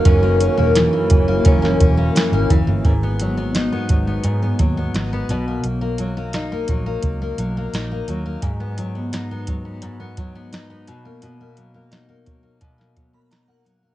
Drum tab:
HH |x-x-x-x-x-x-x-x-|x-x-x-x-x-x-x-x-|x-x-x-x-x-x-x-x-|x-x-x-x-x-x-x-x-|
SD |----o----o--o---|----o-------o---|----o-------o---|----o-------o---|
BD |o-----o-o-o---o-|o-----o---o-----|------o-o-------|o-----o---o-----|

HH |x-x-x-x-x-x-x-x-|
SD |----o----o--o---|
BD |------o-o-o-----|